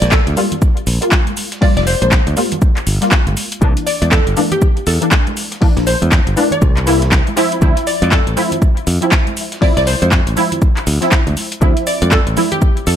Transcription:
Already playing: G3 A#3 F4
0.02 A#1 D5, closed hi-hat, high conga
0.12 A4, kick, snare, clap, shaker
0.27 D2, closed hi-hat
0.36 G3 A#3 F4, open hi-hat, high conga, shaker
0.52 closed hi-hat, low conga
0.62 kick, shaker
0.77 closed hi-hat
0.87 A#1, open hi-hat, shaker
1.01 G3 A#3 F4, closed hi-hat
1.12 kick, snare, clap, shaker
1.27 closed hi-hat, high conga
1.37 open hi-hat, shaker
1.52 snare, closed hi-hat
1.61 G3 A#3 F4 D5, kick, open hi-hat
1.77 F1 D5, snare, closed hi-hat
1.87 C5, snare, open hi-hat, shaker
2.02 A#1 C5, closed hi-hat, high conga
2.12 kick, snare, clap, shaker
2.27 D2, closed hi-hat
2.36 G3 A#3 F4, open hi-hat, high conga, shaker
2.52 closed hi-hat, low conga
2.62 kick, shaker
2.77 clap, closed hi-hat
2.87 G1, open hi-hat, shaker
3.01 G3 A#3 F4, snare, closed hi-hat
3.11 kick, snare, clap, shaker
3.27 G1, closed hi-hat, high conga
3.37 open hi-hat, shaker
3.52 closed hi-hat
3.61 C2 E3 A#3 D4, kick, shaker
3.77 closed hi-hat
3.87 D5, open hi-hat, shaker
4.02 E2 D5, closed hi-hat, high conga
4.12 A4, kick, snare, clap, shaker
4.27 G1, closed hi-hat
4.36 E3 A#3 D4, open hi-hat, high conga, shaker
4.51 G4, closed hi-hat, low conga
4.62 kick, shaker
4.77 closed hi-hat
4.87 E2 A4, open hi-hat, shaker
5.01 E3 A#3 D4, closed hi-hat
5.11 kick, snare, clap, shaker
5.27 closed hi-hat, high conga
5.37 open hi-hat, shaker
5.52 snare, closed hi-hat
5.61 E3 A#3 D4, kick, open hi-hat
5.77 A#1, snare, closed hi-hat
5.87 C5, snare, open hi-hat, shaker
6.02 E2, closed hi-hat, high conga
6.12 kick, snare, clap, shaker
6.27 G1, closed hi-hat
6.36 E3 A#3 D4, open hi-hat, high conga, shaker
6.51 D5, closed hi-hat, low conga
6.62 C2, kick, shaker
6.77 clap, closed hi-hat
6.86 E3 A#3 E4, open hi-hat, shaker
7.02 snare, closed hi-hat
7.12 kick, snare, clap, shaker
7.27 closed hi-hat, high conga
7.36 F3 C4 E4, snare, open hi-hat, shaker
7.52 closed hi-hat
7.61 D2 F3 C4 E4, kick, shaker
7.77 closed hi-hat
7.87 D5, open hi-hat, shaker
8.02 F2 D5, closed hi-hat, high conga
8.12 A4, kick, snare, clap, shaker
8.27 A1, closed hi-hat
8.36 F3 C4 E4, open hi-hat, high conga, shaker
8.52 closed hi-hat, low conga
8.62 kick, shaker
8.77 closed hi-hat
8.87 F2, open hi-hat, shaker
9.01 F3 C4 E4, closed hi-hat
9.12 kick, snare, clap, shaker
9.27 closed hi-hat, high conga
9.37 open hi-hat, shaker
9.52 snare, closed hi-hat
9.61 F3 C4 E4 D5, kick, open hi-hat
9.77 C2 D5, snare, closed hi-hat
9.87 C5, snare, open hi-hat, shaker
10.02 F2 C5, closed hi-hat, high conga
10.12 kick, snare, clap, shaker
10.27 A1, closed hi-hat
10.36 F3 C4 E4, open hi-hat, high conga, shaker
10.52 closed hi-hat, low conga
10.62 kick, shaker
10.77 clap, closed hi-hat
10.87 D2, open hi-hat, shaker
11.01 F3 C4 E4, snare, closed hi-hat
11.12 kick, snare, clap, shaker
11.27 D2, closed hi-hat, high conga
11.37 open hi-hat, shaker
11.52 closed hi-hat
11.61 D2 F3 C4 E4, kick, shaker
11.77 closed hi-hat
11.87 D5, open hi-hat, shaker
12.02 F2 D5, closed hi-hat, high conga
12.11 A4, kick, snare, clap, shaker
12.27 A1, closed hi-hat
12.36 F3 C4 E4, open hi-hat, high conga, shaker
12.52 G4, closed hi-hat, low conga
12.62 kick, shaker
12.77 closed hi-hat
12.87 F2 A4, open hi-hat, shaker

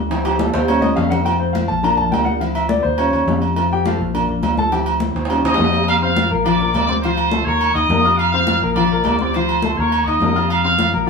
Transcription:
Already playing: D2
0.10 F3 C4 E4, high conga, high timbale, low agogo
0.25 G4, high conga, high timbale, low agogo
0.39 A4, high conga, low timbale
0.54 D#2 C5, low timbale
0.68 G3 C#4 F4 C#5, high conga, low timbale, low agogo
0.81 D#5, high conga, low agogo
0.96 F2 F5, low timbale
1.10 F#5, low conga, low timbale, low agogo
1.25 A3 C4 F4 G5, high conga, low agogo
1.40 C5, high conga
1.53 F5, high conga, low timbale, low agogo
1.68 A#1 A5, high conga
1.83 A#3 D4 F4 A#5, high conga, low conga, low agogo
1.97 A5, high conga, low conga
2.12 D2 G5, high conga, low timbale, low agogo
2.25 F#5, high conga
2.40 F3 C4 E4 F5, high conga, low agogo
2.55 E5, high conga, low agogo
2.69 D5, high conga, low timbale
2.83 D#2 C5, high conga
2.98 G3 C#4 F4 C#5, high conga, low agogo
3.13 D#2, high conga, low agogo
3.27 F2, high conga, low timbale
3.42 high conga, low agogo
3.56 A3 C4 F4, high conga, low agogo
3.71 G4 G5, high conga
3.85 F4 A4 C5 F5, high conga, low timbale, low agogo
3.99 A#1, high conga
4.13 A#3 D4 F4, high conga, low conga, low agogo
4.29 high conga, low conga
4.42 D2, high conga, low timbale, low agogo
4.57 A4 A5, high conga
4.72 F3 C4 E4 G4 G5, high conga, low agogo
4.86 high conga, low agogo
5.00 high conga, low timbale
5.15 D#2, high conga, high timbale
5.25 G3, high conga, high timbale
5.30 C#4 F4, low agogo
5.44 D#2 D#5 D#6, high conga, high timbale, low agogo
5.54 high conga, low timbale
5.59 F2
5.64 low timbale
5.73 high conga, low timbale, low agogo
5.83 high conga, low timbale
5.88 F5, low agogo
6.02 C4 C5 F5 C6, high conga
6.17 F4 F5 F6, high conga, low timbale, low agogo
6.31 A#1 A#3 A#4 A#5, high conga
6.45 F3 F4 D5 F5 D6, high conga, low conga, low agogo
6.60 A#3 A#4 A#5, high conga, low conga
6.74 D2 D5 D6, high conga, low timbale, low agogo
6.87 C4 C5 D5 C6 D6, high conga
7.02 F3 F4 C5 F5 C6, high conga, low agogo
7.17 high conga, low agogo
7.31 A3 A4 A5, high conga, low timbale
7.45 D#2 A#3 A#4 C#5 A#5 C#6, high conga
7.61 high conga, low agogo
7.74 D#2 D#4 D#5 D#6, high conga, low agogo
7.89 F2 A#3 A#4 A#5, high conga, low timbale
8.05 F4 F5 F6, high conga, low agogo
8.17 F5, high conga, low agogo
8.32 C4 C5 F5 C6, high conga
8.47 F4 F5 F6, high conga, low timbale, low agogo
8.61 A#1 A#3 A#4 A#5, high conga
8.76 F3 F4 D5 F5 D6, high conga, low conga, low agogo
8.90 A#3 A#4 A#5, high conga
9.04 D2 D5, high conga, low timbale, low agogo
9.09 D6
9.19 C4 C5 D5 C6, high conga
9.23 D6
9.33 F3 F4 C5 F5 C6, high conga, low agogo
9.48 high conga, low agogo
9.62 A3 A4 A5, high conga, low timbale
9.77 D#2 A#3 A#4 C#5 A#5 C#6, high conga
9.91 high conga, low agogo
10.06 D#2 D#4 D#5 D#6, high conga, low agogo
10.21 F2 A#3 A#4 A#5, high conga, low timbale
10.35 F4 F5 F6, high conga, low agogo
10.50 F5, high conga, low agogo
10.64 C4 C5 F5 C6, high conga
10.78 F4 F5 F6, high conga, low timbale, low agogo
10.93 A#1 A#3 A#4 A#5, high conga
11.07 F4

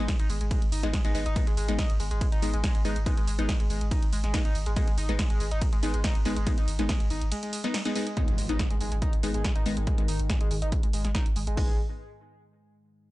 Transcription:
0.00 G#3 B3 D#4
0.08 kick, snare, closed hi-hat, ride
0.19 G#1 D#4, closed hi-hat
0.30 G#1 G#3, open hi-hat
0.41 G#1 G#3, closed hi-hat
0.51 G#3, kick, closed hi-hat, ride
0.62 G#1, closed hi-hat
0.72 G#1 D#4, open hi-hat
0.83 G#1 G#3 B3 D#4, snare, closed hi-hat
0.93 G#3, kick, snare, closed hi-hat, ride
1.05 G#1 G#3 B3 D#4, closed hi-hat
1.15 G#1 G#3 B3 D#4, open hi-hat
1.26 G#1 D#4, closed hi-hat
1.36 G#3 B3 D#4, kick, closed hi-hat, ride
1.47 G#1 G#3, closed hi-hat
1.57 G#1 G#3, open hi-hat
1.68 G#1 G#3 B3 D#4, closed hi-hat
1.79 D#4, kick, snare, closed hi-hat, ride
1.90 G#1, closed hi-hat
2.00 G#1 G#3, open hi-hat
2.11 G#1 G#3, closed hi-hat
2.21 G#3, kick, closed hi-hat, ride
2.32 G#1 D#4, closed hi-hat
2.42 G#1 G#3 B3 D#4, open hi-hat
2.53 G#1 G#3, closed hi-hat
2.64 G#3, kick, snare, closed hi-hat, ride
2.75 G#1 G#3, closed hi-hat
2.85 G#1 G#3 B3 D#4, open hi-hat
2.96 G#1, closed hi-hat
3.06 G#3 B3 D#4, kick, closed hi-hat, ride
3.17 G#1 G#3, closed hi-hat
3.27 G#1 G#3, open hi-hat
3.39 G#1 G#3 B3 D#4, closed hi-hat
3.49 kick, snare, closed hi-hat, ride
3.60 G#1 G#3, closed hi-hat
3.70 G#1 G#3, open hi-hat
3.81 G#1 G#3, closed hi-hat
3.91 D#4, kick, closed hi-hat, ride
4.02 G#1, closed hi-hat
4.13 G#1 G#3, open hi-hat
4.24 G#1 G#3, snare, closed hi-hat
4.34 G#3 B3 D#4, kick, snare, closed hi-hat, ride
4.45 G#1 D#4, closed hi-hat
4.55 G#1, open hi-hat
4.66 G#1 G#3, closed hi-hat
4.76 G#3 B3 D#4, kick, closed hi-hat, ride
4.88 G#1 G#3, closed hi-hat
4.98 G#1 D#4, open hi-hat
5.09 G#1 G#3 B3 D#4, closed hi-hat
5.19 G#3, kick, snare, closed hi-hat, ride
5.30 G#1 G#3, closed hi-hat
5.40 G#1 G#3, open hi-hat
5.51 G#1 D#4, closed hi-hat
5.62 kick, closed hi-hat, ride
5.73 G#1 G#3, closed hi-hat
5.83 G#1 G#3 B3 D#4, open hi-hat
5.94 G#1 G#3, closed hi-hat
6.04 D#4, kick, snare, closed hi-hat, ride
6.15 G#1, closed hi-hat
6.25 G#1 G#3 B3 D#4, open hi-hat
6.36 G#1 G#3, closed hi-hat
6.47 G#3 B3 D#4, kick, closed hi-hat, ride
6.58 G#1 D#4, closed hi-hat
6.68 G#1, open hi-hat
6.79 G#1 G#3 B3 D#4, closed hi-hat
6.89 G#3, kick, snare, closed hi-hat, ride
7.00 G#1 G#3, closed hi-hat
7.10 G#1 D#4, open hi-hat
7.21 G#1, closed hi-hat
7.32 G#3, closed hi-hat, ride
7.43 G#3, closed hi-hat
7.53 G#3, open hi-hat
7.64 G#3 B3 D#4, snare, closed hi-hat
7.74 snare, closed hi-hat, ride
7.85 G#3 B3 D#4, closed hi-hat
7.96 G#3 B3 D#4, open hi-hat
8.07 G#3, closed hi-hat
8.17 G#2 D#3 G#3 B3 D#4, kick, closed hi-hat, impact
8.28 G#1 G#3, closed hi-hat
8.38 G#1 G#3, open hi-hat
8.49 G#1 G#3 B3 D#4, closed hi-hat
8.59 kick, snare, closed hi-hat
8.71 G#1 G#3, closed hi-hat
8.81 G#1 G#3, open hi-hat
8.92 G#1 G#3, closed hi-hat
9.02 D#4, kick, closed hi-hat
9.13 G#1, closed hi-hat
9.23 G#1 G#3 B3 D#4, open hi-hat
9.34 G#1 G#3, closed hi-hat
9.44 G#3, kick, snare, closed hi-hat
9.56 G#1 D#4, closed hi-hat
9.66 G#1 G#3 B3 D#4, open hi-hat
9.77 G#1 G#3, closed hi-hat
9.87 G#3, kick, closed hi-hat
9.98 G#1 G#3, closed hi-hat
10.08 G#1 D#4, open hi-hat
10.19 G#1, closed hi-hat
10.30 G#3, kick, snare, closed hi-hat
10.41 G#1 G#3, closed hi-hat
10.51 G#1 G#3, open hi-hat
10.62 G#1 D#4, closed hi-hat
10.72 kick, closed hi-hat
10.83 G#1 G#3, closed hi-hat
10.93 G#1 G#3, open hi-hat
11.05 G#1 G#3, snare, closed hi-hat
11.15 D#4, kick, snare, closed hi-hat
11.26 G#1, closed hi-hat
11.36 G#1 G#3, open hi-hat
11.47 G#1 G#3, closed hi-hat
11.57 G#1 G#3 B3 D#4, kick, open hi-hat

